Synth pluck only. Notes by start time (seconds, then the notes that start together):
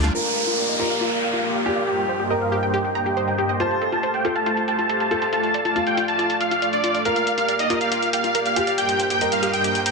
0.04 F5
0.15 F4
0.36 A#4
0.47 F4
0.58 D5
0.79 F4
0.90 F5
1.01 F4
1.23 G5
1.33 F4
1.44 A#4
1.66 F4
1.77 D5
1.87 G4
2.09 C5
2.20 G4
2.30 D#5
2.52 G4
2.63 G5
2.74 G4
2.95 A#5
3.06 G4
3.17 C5
3.38 G4
3.49 D#5
3.60 F4
3.82 A4
3.92 F4
4.03 C5
4.25 F4
4.36 F5
4.46 F4
4.68 G5
4.79 F4
4.90 A4
5.11 F4
5.22 C5
5.33 F4
5.54 D5
5.65 F4
5.76 F5
5.97 F4
6.08 A5
6.19 F4
6.41 D6
6.51 F4
6.62 D5
6.84 F4
6.95 F5
7.05 F4
7.27 A#4
7.38 F4
7.49 D5
7.70 F4
7.81 F5
7.92 F4
8.13 G5
8.24 F4
8.35 A#4
8.56 F4
8.67 D5
8.78 G4
9.00 C5
9.10 G4
9.21 D#5
9.43 G4
9.53 G5
9.64 G4
9.86 A#5